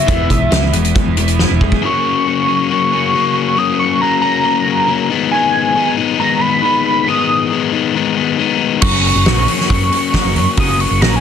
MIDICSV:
0, 0, Header, 1, 7, 480
1, 0, Start_track
1, 0, Tempo, 437637
1, 88, Time_signature, 4, 2, 24, 8
1, 12287, End_track
2, 0, Start_track
2, 0, Title_t, "Analog synth lead"
2, 0, Program_c, 0, 81
2, 0, Note_on_c, 0, 76, 101
2, 783, Note_off_c, 0, 76, 0
2, 2033, Note_on_c, 0, 85, 103
2, 2932, Note_off_c, 0, 85, 0
2, 2973, Note_on_c, 0, 85, 113
2, 3928, Note_on_c, 0, 87, 100
2, 3944, Note_off_c, 0, 85, 0
2, 4157, Note_off_c, 0, 87, 0
2, 4163, Note_on_c, 0, 85, 104
2, 4383, Note_off_c, 0, 85, 0
2, 4403, Note_on_c, 0, 82, 103
2, 4618, Note_off_c, 0, 82, 0
2, 4625, Note_on_c, 0, 82, 81
2, 5546, Note_off_c, 0, 82, 0
2, 5827, Note_on_c, 0, 80, 122
2, 6507, Note_off_c, 0, 80, 0
2, 6796, Note_on_c, 0, 82, 92
2, 7028, Note_on_c, 0, 83, 108
2, 7044, Note_off_c, 0, 82, 0
2, 7511, Note_off_c, 0, 83, 0
2, 7522, Note_on_c, 0, 83, 109
2, 7762, Note_on_c, 0, 87, 109
2, 7779, Note_off_c, 0, 83, 0
2, 8239, Note_off_c, 0, 87, 0
2, 9667, Note_on_c, 0, 85, 100
2, 10591, Note_off_c, 0, 85, 0
2, 10635, Note_on_c, 0, 85, 99
2, 11556, Note_off_c, 0, 85, 0
2, 11623, Note_on_c, 0, 87, 105
2, 11837, Note_off_c, 0, 87, 0
2, 11853, Note_on_c, 0, 85, 92
2, 12079, Note_on_c, 0, 82, 105
2, 12095, Note_off_c, 0, 85, 0
2, 12234, Note_off_c, 0, 82, 0
2, 12241, Note_on_c, 0, 80, 66
2, 12287, Note_off_c, 0, 80, 0
2, 12287, End_track
3, 0, Start_track
3, 0, Title_t, "Overdriven electric guitar"
3, 0, Program_c, 1, 29
3, 337, Note_on_c, 1, 59, 74
3, 574, Note_on_c, 1, 64, 66
3, 791, Note_off_c, 1, 59, 0
3, 804, Note_on_c, 1, 59, 72
3, 1277, Note_off_c, 1, 59, 0
3, 1290, Note_on_c, 1, 59, 74
3, 1517, Note_off_c, 1, 64, 0
3, 1530, Note_on_c, 1, 64, 76
3, 1765, Note_on_c, 1, 68, 68
3, 2004, Note_off_c, 1, 68, 0
3, 2006, Note_off_c, 1, 59, 0
3, 2006, Note_off_c, 1, 64, 0
3, 9697, Note_on_c, 1, 66, 95
3, 9918, Note_off_c, 1, 66, 0
3, 10182, Note_on_c, 1, 66, 91
3, 10401, Note_off_c, 1, 66, 0
3, 11152, Note_on_c, 1, 66, 104
3, 11363, Note_off_c, 1, 66, 0
3, 11626, Note_on_c, 1, 66, 85
3, 11838, Note_off_c, 1, 66, 0
3, 12098, Note_on_c, 1, 66, 97
3, 12287, Note_off_c, 1, 66, 0
3, 12287, End_track
4, 0, Start_track
4, 0, Title_t, "Overdriven electric guitar"
4, 0, Program_c, 2, 29
4, 72, Note_on_c, 2, 52, 90
4, 78, Note_on_c, 2, 56, 85
4, 84, Note_on_c, 2, 59, 98
4, 305, Note_off_c, 2, 52, 0
4, 308, Note_off_c, 2, 56, 0
4, 311, Note_off_c, 2, 59, 0
4, 319, Note_on_c, 2, 52, 68
4, 323, Note_on_c, 2, 56, 76
4, 539, Note_off_c, 2, 52, 0
4, 541, Note_off_c, 2, 56, 0
4, 555, Note_on_c, 2, 52, 70
4, 561, Note_on_c, 2, 56, 77
4, 776, Note_off_c, 2, 52, 0
4, 779, Note_off_c, 2, 56, 0
4, 805, Note_on_c, 2, 52, 72
4, 809, Note_on_c, 2, 56, 73
4, 1021, Note_off_c, 2, 52, 0
4, 1023, Note_off_c, 2, 56, 0
4, 1042, Note_on_c, 2, 56, 89
4, 1044, Note_on_c, 2, 52, 72
4, 1259, Note_off_c, 2, 56, 0
4, 1260, Note_off_c, 2, 52, 0
4, 1285, Note_on_c, 2, 52, 71
4, 1293, Note_on_c, 2, 56, 75
4, 1500, Note_off_c, 2, 52, 0
4, 1505, Note_off_c, 2, 56, 0
4, 1530, Note_on_c, 2, 52, 73
4, 1537, Note_on_c, 2, 56, 80
4, 1743, Note_off_c, 2, 52, 0
4, 1746, Note_off_c, 2, 56, 0
4, 1770, Note_on_c, 2, 52, 62
4, 1773, Note_on_c, 2, 56, 84
4, 1982, Note_off_c, 2, 52, 0
4, 1984, Note_off_c, 2, 56, 0
4, 1997, Note_on_c, 2, 42, 96
4, 2012, Note_on_c, 2, 49, 92
4, 2023, Note_on_c, 2, 54, 96
4, 2028, Note_on_c, 2, 58, 92
4, 2035, Note_on_c, 2, 61, 108
4, 2465, Note_off_c, 2, 49, 0
4, 2479, Note_on_c, 2, 49, 79
4, 2491, Note_off_c, 2, 54, 0
4, 2495, Note_on_c, 2, 54, 71
4, 2504, Note_off_c, 2, 58, 0
4, 2508, Note_on_c, 2, 58, 82
4, 2514, Note_off_c, 2, 61, 0
4, 2518, Note_on_c, 2, 61, 79
4, 2702, Note_off_c, 2, 61, 0
4, 2715, Note_on_c, 2, 61, 77
4, 2731, Note_off_c, 2, 58, 0
4, 2736, Note_on_c, 2, 58, 64
4, 2737, Note_off_c, 2, 54, 0
4, 2750, Note_on_c, 2, 54, 61
4, 2953, Note_off_c, 2, 42, 0
4, 2957, Note_off_c, 2, 49, 0
4, 2958, Note_on_c, 2, 42, 102
4, 2967, Note_off_c, 2, 54, 0
4, 2970, Note_on_c, 2, 49, 98
4, 2980, Note_off_c, 2, 58, 0
4, 2980, Note_on_c, 2, 54, 103
4, 2985, Note_on_c, 2, 58, 109
4, 2987, Note_off_c, 2, 61, 0
4, 3000, Note_on_c, 2, 61, 109
4, 3192, Note_off_c, 2, 61, 0
4, 3205, Note_on_c, 2, 61, 73
4, 3221, Note_off_c, 2, 58, 0
4, 3226, Note_on_c, 2, 58, 66
4, 3231, Note_off_c, 2, 54, 0
4, 3244, Note_on_c, 2, 54, 61
4, 3423, Note_off_c, 2, 49, 0
4, 3436, Note_on_c, 2, 49, 74
4, 3438, Note_off_c, 2, 42, 0
4, 3438, Note_off_c, 2, 54, 0
4, 3452, Note_on_c, 2, 54, 78
4, 3456, Note_off_c, 2, 58, 0
4, 3461, Note_on_c, 2, 58, 85
4, 3465, Note_off_c, 2, 61, 0
4, 3478, Note_on_c, 2, 61, 80
4, 3908, Note_on_c, 2, 42, 92
4, 3909, Note_off_c, 2, 49, 0
4, 3917, Note_off_c, 2, 54, 0
4, 3922, Note_on_c, 2, 49, 92
4, 3930, Note_on_c, 2, 54, 91
4, 3933, Note_off_c, 2, 61, 0
4, 3938, Note_off_c, 2, 58, 0
4, 3942, Note_on_c, 2, 58, 97
4, 3946, Note_on_c, 2, 61, 95
4, 4388, Note_off_c, 2, 49, 0
4, 4401, Note_on_c, 2, 49, 77
4, 4404, Note_off_c, 2, 54, 0
4, 4417, Note_on_c, 2, 54, 88
4, 4421, Note_off_c, 2, 58, 0
4, 4424, Note_off_c, 2, 61, 0
4, 4426, Note_on_c, 2, 58, 87
4, 4437, Note_on_c, 2, 61, 86
4, 4614, Note_off_c, 2, 61, 0
4, 4627, Note_on_c, 2, 61, 88
4, 4632, Note_off_c, 2, 42, 0
4, 4645, Note_off_c, 2, 58, 0
4, 4650, Note_on_c, 2, 58, 76
4, 4656, Note_off_c, 2, 54, 0
4, 4669, Note_on_c, 2, 54, 67
4, 4859, Note_off_c, 2, 49, 0
4, 4864, Note_on_c, 2, 42, 91
4, 4870, Note_off_c, 2, 54, 0
4, 4872, Note_on_c, 2, 49, 96
4, 4883, Note_on_c, 2, 54, 104
4, 4885, Note_off_c, 2, 58, 0
4, 4887, Note_off_c, 2, 61, 0
4, 4889, Note_on_c, 2, 58, 110
4, 4900, Note_on_c, 2, 61, 115
4, 5092, Note_off_c, 2, 61, 0
4, 5105, Note_on_c, 2, 61, 65
4, 5121, Note_off_c, 2, 58, 0
4, 5125, Note_on_c, 2, 58, 71
4, 5130, Note_off_c, 2, 54, 0
4, 5143, Note_on_c, 2, 54, 63
4, 5328, Note_off_c, 2, 49, 0
4, 5341, Note_on_c, 2, 49, 78
4, 5343, Note_off_c, 2, 54, 0
4, 5349, Note_off_c, 2, 42, 0
4, 5356, Note_on_c, 2, 54, 85
4, 5365, Note_off_c, 2, 58, 0
4, 5368, Note_off_c, 2, 61, 0
4, 5370, Note_on_c, 2, 58, 90
4, 5382, Note_on_c, 2, 61, 80
4, 5574, Note_off_c, 2, 49, 0
4, 5581, Note_off_c, 2, 54, 0
4, 5586, Note_off_c, 2, 61, 0
4, 5591, Note_on_c, 2, 63, 91
4, 5603, Note_off_c, 2, 58, 0
4, 5608, Note_on_c, 2, 59, 99
4, 5614, Note_on_c, 2, 56, 84
4, 5624, Note_on_c, 2, 51, 73
4, 5632, Note_on_c, 2, 44, 80
4, 5836, Note_off_c, 2, 44, 0
4, 5839, Note_off_c, 2, 51, 0
4, 5840, Note_on_c, 2, 44, 97
4, 5852, Note_on_c, 2, 51, 108
4, 5859, Note_off_c, 2, 56, 0
4, 5864, Note_on_c, 2, 56, 95
4, 5867, Note_off_c, 2, 59, 0
4, 5871, Note_on_c, 2, 59, 112
4, 5873, Note_off_c, 2, 63, 0
4, 5877, Note_on_c, 2, 63, 101
4, 6292, Note_off_c, 2, 51, 0
4, 6306, Note_on_c, 2, 51, 69
4, 6314, Note_off_c, 2, 56, 0
4, 6318, Note_on_c, 2, 56, 77
4, 6327, Note_off_c, 2, 59, 0
4, 6331, Note_on_c, 2, 59, 80
4, 6341, Note_off_c, 2, 63, 0
4, 6346, Note_on_c, 2, 63, 82
4, 6544, Note_off_c, 2, 63, 0
4, 6548, Note_on_c, 2, 63, 84
4, 6567, Note_off_c, 2, 59, 0
4, 6572, Note_on_c, 2, 59, 62
4, 6584, Note_off_c, 2, 56, 0
4, 6588, Note_on_c, 2, 56, 59
4, 6777, Note_off_c, 2, 44, 0
4, 6777, Note_off_c, 2, 51, 0
4, 6781, Note_on_c, 2, 44, 105
4, 6788, Note_off_c, 2, 56, 0
4, 6790, Note_on_c, 2, 51, 107
4, 6799, Note_off_c, 2, 59, 0
4, 6802, Note_on_c, 2, 56, 99
4, 6807, Note_off_c, 2, 63, 0
4, 6812, Note_on_c, 2, 59, 110
4, 6820, Note_on_c, 2, 63, 118
4, 6998, Note_off_c, 2, 63, 0
4, 7011, Note_on_c, 2, 63, 75
4, 7021, Note_off_c, 2, 59, 0
4, 7034, Note_on_c, 2, 59, 69
4, 7039, Note_off_c, 2, 56, 0
4, 7052, Note_on_c, 2, 56, 57
4, 7247, Note_off_c, 2, 51, 0
4, 7259, Note_off_c, 2, 56, 0
4, 7260, Note_on_c, 2, 51, 69
4, 7268, Note_off_c, 2, 44, 0
4, 7272, Note_on_c, 2, 56, 92
4, 7275, Note_off_c, 2, 59, 0
4, 7284, Note_off_c, 2, 63, 0
4, 7288, Note_on_c, 2, 59, 91
4, 7297, Note_on_c, 2, 63, 88
4, 7745, Note_off_c, 2, 51, 0
4, 7746, Note_on_c, 2, 44, 89
4, 7756, Note_off_c, 2, 56, 0
4, 7759, Note_on_c, 2, 51, 100
4, 7760, Note_off_c, 2, 59, 0
4, 7769, Note_off_c, 2, 63, 0
4, 7769, Note_on_c, 2, 56, 91
4, 7773, Note_on_c, 2, 59, 98
4, 7782, Note_on_c, 2, 63, 102
4, 8215, Note_off_c, 2, 51, 0
4, 8228, Note_on_c, 2, 51, 77
4, 8231, Note_off_c, 2, 56, 0
4, 8239, Note_off_c, 2, 59, 0
4, 8244, Note_on_c, 2, 56, 84
4, 8249, Note_off_c, 2, 63, 0
4, 8253, Note_on_c, 2, 59, 76
4, 8262, Note_on_c, 2, 63, 77
4, 8454, Note_off_c, 2, 63, 0
4, 8468, Note_on_c, 2, 63, 71
4, 8471, Note_off_c, 2, 44, 0
4, 8475, Note_off_c, 2, 59, 0
4, 8488, Note_on_c, 2, 59, 72
4, 8492, Note_off_c, 2, 56, 0
4, 8505, Note_on_c, 2, 56, 66
4, 8708, Note_off_c, 2, 51, 0
4, 8711, Note_on_c, 2, 44, 88
4, 8718, Note_off_c, 2, 56, 0
4, 8722, Note_on_c, 2, 51, 104
4, 8728, Note_off_c, 2, 59, 0
4, 8731, Note_off_c, 2, 63, 0
4, 8731, Note_on_c, 2, 56, 108
4, 8741, Note_on_c, 2, 59, 112
4, 8744, Note_on_c, 2, 63, 114
4, 8936, Note_off_c, 2, 63, 0
4, 8949, Note_on_c, 2, 63, 76
4, 8954, Note_off_c, 2, 59, 0
4, 8967, Note_on_c, 2, 59, 69
4, 8973, Note_off_c, 2, 56, 0
4, 8987, Note_on_c, 2, 56, 65
4, 9169, Note_off_c, 2, 51, 0
4, 9182, Note_on_c, 2, 51, 76
4, 9185, Note_off_c, 2, 56, 0
4, 9194, Note_off_c, 2, 44, 0
4, 9197, Note_off_c, 2, 59, 0
4, 9198, Note_on_c, 2, 56, 76
4, 9208, Note_off_c, 2, 63, 0
4, 9210, Note_on_c, 2, 59, 85
4, 9221, Note_on_c, 2, 63, 94
4, 9656, Note_off_c, 2, 51, 0
4, 9664, Note_off_c, 2, 56, 0
4, 9667, Note_on_c, 2, 42, 99
4, 9670, Note_off_c, 2, 59, 0
4, 9675, Note_off_c, 2, 63, 0
4, 9678, Note_on_c, 2, 49, 85
4, 9684, Note_on_c, 2, 54, 100
4, 9698, Note_on_c, 2, 58, 100
4, 9706, Note_on_c, 2, 61, 121
4, 10133, Note_off_c, 2, 49, 0
4, 10146, Note_on_c, 2, 49, 70
4, 10159, Note_off_c, 2, 54, 0
4, 10164, Note_on_c, 2, 54, 72
4, 10171, Note_off_c, 2, 58, 0
4, 10175, Note_on_c, 2, 58, 76
4, 10179, Note_off_c, 2, 61, 0
4, 10184, Note_on_c, 2, 61, 84
4, 10367, Note_off_c, 2, 61, 0
4, 10380, Note_on_c, 2, 61, 80
4, 10389, Note_off_c, 2, 58, 0
4, 10402, Note_on_c, 2, 58, 69
4, 10413, Note_off_c, 2, 54, 0
4, 10417, Note_on_c, 2, 54, 64
4, 10611, Note_off_c, 2, 42, 0
4, 10614, Note_off_c, 2, 49, 0
4, 10615, Note_on_c, 2, 42, 89
4, 10628, Note_on_c, 2, 49, 95
4, 10631, Note_off_c, 2, 54, 0
4, 10634, Note_off_c, 2, 58, 0
4, 10635, Note_on_c, 2, 54, 97
4, 10637, Note_off_c, 2, 61, 0
4, 10647, Note_on_c, 2, 58, 104
4, 10650, Note_on_c, 2, 61, 103
4, 10855, Note_off_c, 2, 61, 0
4, 10868, Note_on_c, 2, 61, 73
4, 10873, Note_off_c, 2, 58, 0
4, 10886, Note_on_c, 2, 58, 71
4, 10897, Note_off_c, 2, 54, 0
4, 10902, Note_on_c, 2, 54, 68
4, 11081, Note_off_c, 2, 49, 0
4, 11094, Note_on_c, 2, 49, 71
4, 11102, Note_off_c, 2, 54, 0
4, 11107, Note_on_c, 2, 54, 88
4, 11109, Note_off_c, 2, 42, 0
4, 11109, Note_off_c, 2, 58, 0
4, 11118, Note_off_c, 2, 61, 0
4, 11122, Note_on_c, 2, 58, 97
4, 11131, Note_on_c, 2, 61, 92
4, 11584, Note_on_c, 2, 42, 95
4, 11586, Note_off_c, 2, 49, 0
4, 11599, Note_on_c, 2, 49, 105
4, 11603, Note_off_c, 2, 58, 0
4, 11606, Note_off_c, 2, 54, 0
4, 11610, Note_on_c, 2, 54, 91
4, 11612, Note_off_c, 2, 61, 0
4, 11616, Note_on_c, 2, 58, 107
4, 11626, Note_on_c, 2, 61, 105
4, 12056, Note_off_c, 2, 49, 0
4, 12070, Note_on_c, 2, 49, 74
4, 12080, Note_off_c, 2, 58, 0
4, 12082, Note_off_c, 2, 54, 0
4, 12086, Note_on_c, 2, 54, 74
4, 12093, Note_off_c, 2, 61, 0
4, 12093, Note_on_c, 2, 58, 73
4, 12106, Note_on_c, 2, 61, 80
4, 12287, Note_off_c, 2, 42, 0
4, 12287, Note_off_c, 2, 49, 0
4, 12287, Note_off_c, 2, 54, 0
4, 12287, Note_off_c, 2, 58, 0
4, 12287, Note_off_c, 2, 61, 0
4, 12287, End_track
5, 0, Start_track
5, 0, Title_t, "Fingered electric bass"
5, 0, Program_c, 3, 33
5, 93, Note_on_c, 3, 28, 89
5, 294, Note_off_c, 3, 28, 0
5, 331, Note_on_c, 3, 35, 93
5, 533, Note_off_c, 3, 35, 0
5, 566, Note_on_c, 3, 37, 104
5, 770, Note_off_c, 3, 37, 0
5, 800, Note_on_c, 3, 28, 105
5, 1006, Note_off_c, 3, 28, 0
5, 1162, Note_on_c, 3, 28, 98
5, 1571, Note_off_c, 3, 28, 0
5, 1653, Note_on_c, 3, 28, 73
5, 1853, Note_off_c, 3, 28, 0
5, 9680, Note_on_c, 3, 30, 112
5, 9985, Note_off_c, 3, 30, 0
5, 10038, Note_on_c, 3, 30, 102
5, 10140, Note_off_c, 3, 30, 0
5, 10154, Note_on_c, 3, 34, 101
5, 10360, Note_off_c, 3, 34, 0
5, 10642, Note_on_c, 3, 42, 101
5, 10846, Note_off_c, 3, 42, 0
5, 11237, Note_on_c, 3, 30, 76
5, 11359, Note_on_c, 3, 42, 92
5, 11375, Note_off_c, 3, 30, 0
5, 11462, Note_off_c, 3, 42, 0
5, 11600, Note_on_c, 3, 30, 116
5, 11908, Note_off_c, 3, 30, 0
5, 11962, Note_on_c, 3, 30, 89
5, 12065, Note_off_c, 3, 30, 0
5, 12079, Note_on_c, 3, 34, 107
5, 12286, Note_off_c, 3, 34, 0
5, 12287, End_track
6, 0, Start_track
6, 0, Title_t, "Muted overdriven electric guitar strokes"
6, 9931, Note_on_c, 9, 29, 58
6, 10041, Note_off_c, 9, 29, 0
6, 10414, Note_on_c, 9, 29, 49
6, 10524, Note_off_c, 9, 29, 0
6, 10658, Note_on_c, 9, 29, 50
6, 10768, Note_off_c, 9, 29, 0
6, 10900, Note_on_c, 9, 29, 49
6, 11010, Note_off_c, 9, 29, 0
6, 11374, Note_on_c, 9, 29, 48
6, 11484, Note_off_c, 9, 29, 0
6, 11851, Note_on_c, 9, 29, 65
6, 11960, Note_off_c, 9, 29, 0
6, 12287, End_track
7, 0, Start_track
7, 0, Title_t, "Drums"
7, 90, Note_on_c, 9, 42, 79
7, 91, Note_on_c, 9, 36, 127
7, 200, Note_off_c, 9, 42, 0
7, 201, Note_off_c, 9, 36, 0
7, 331, Note_on_c, 9, 36, 95
7, 333, Note_on_c, 9, 42, 72
7, 440, Note_off_c, 9, 36, 0
7, 442, Note_off_c, 9, 42, 0
7, 567, Note_on_c, 9, 42, 65
7, 571, Note_on_c, 9, 38, 100
7, 677, Note_off_c, 9, 42, 0
7, 681, Note_off_c, 9, 38, 0
7, 804, Note_on_c, 9, 42, 65
7, 914, Note_off_c, 9, 42, 0
7, 928, Note_on_c, 9, 42, 67
7, 1037, Note_off_c, 9, 42, 0
7, 1046, Note_on_c, 9, 42, 63
7, 1049, Note_on_c, 9, 36, 120
7, 1156, Note_off_c, 9, 42, 0
7, 1159, Note_off_c, 9, 36, 0
7, 1283, Note_on_c, 9, 42, 76
7, 1392, Note_off_c, 9, 42, 0
7, 1401, Note_on_c, 9, 42, 71
7, 1510, Note_off_c, 9, 42, 0
7, 1527, Note_on_c, 9, 38, 62
7, 1636, Note_off_c, 9, 38, 0
7, 1766, Note_on_c, 9, 36, 81
7, 1876, Note_off_c, 9, 36, 0
7, 1886, Note_on_c, 9, 36, 92
7, 1995, Note_off_c, 9, 36, 0
7, 9671, Note_on_c, 9, 49, 118
7, 9676, Note_on_c, 9, 36, 124
7, 9781, Note_off_c, 9, 49, 0
7, 9786, Note_off_c, 9, 36, 0
7, 9920, Note_on_c, 9, 46, 72
7, 10029, Note_off_c, 9, 46, 0
7, 10154, Note_on_c, 9, 46, 77
7, 10159, Note_on_c, 9, 38, 106
7, 10264, Note_off_c, 9, 46, 0
7, 10268, Note_off_c, 9, 38, 0
7, 10397, Note_on_c, 9, 46, 68
7, 10507, Note_off_c, 9, 46, 0
7, 10536, Note_on_c, 9, 38, 31
7, 10640, Note_on_c, 9, 36, 120
7, 10643, Note_on_c, 9, 46, 88
7, 10645, Note_off_c, 9, 38, 0
7, 10750, Note_off_c, 9, 36, 0
7, 10753, Note_off_c, 9, 46, 0
7, 10885, Note_on_c, 9, 46, 73
7, 10994, Note_off_c, 9, 46, 0
7, 11120, Note_on_c, 9, 36, 84
7, 11125, Note_on_c, 9, 46, 94
7, 11129, Note_on_c, 9, 38, 118
7, 11230, Note_off_c, 9, 36, 0
7, 11235, Note_off_c, 9, 46, 0
7, 11239, Note_off_c, 9, 38, 0
7, 11362, Note_on_c, 9, 46, 64
7, 11471, Note_off_c, 9, 46, 0
7, 11595, Note_on_c, 9, 46, 101
7, 11600, Note_on_c, 9, 36, 127
7, 11704, Note_off_c, 9, 46, 0
7, 11710, Note_off_c, 9, 36, 0
7, 11845, Note_on_c, 9, 46, 77
7, 11954, Note_off_c, 9, 46, 0
7, 12086, Note_on_c, 9, 46, 91
7, 12090, Note_on_c, 9, 38, 107
7, 12195, Note_off_c, 9, 46, 0
7, 12200, Note_off_c, 9, 38, 0
7, 12287, End_track
0, 0, End_of_file